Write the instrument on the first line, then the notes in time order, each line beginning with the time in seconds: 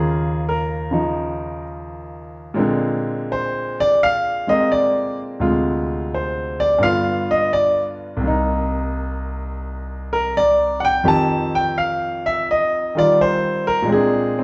grand piano
Already playing: D#2 C#3 A#3 F4 G#4
0.49 A#4
0.91 C#3 F3 D#4
2.54 A#2 G#3 C4
2.59 D3
3.32 C5
3.80 D5
4.03 F5
4.47 G#3 A#3 C4 D#5
4.72 D5
5.40 D2 C3 G#3 F4
6.14 C5
6.60 D5
6.78 G2 D3 B3
6.83 F4 F5
7.31 D#5
7.53 D5
8.17 C2 C3
8.24 A#3 D#4
10.13 A#4
10.37 D5
10.80 F#5
10.85 G5
11.04 F2 D#3 C4 G4
11.08 A5
11.55 G5
11.78 F5
12.26 E5
12.51 D#5
12.95 D#3 G3 F4 D5
13.21 C5
13.67 A#4
13.82 A#2 G#3
13.89 C4 G#4
13.93 D4
14.39 C4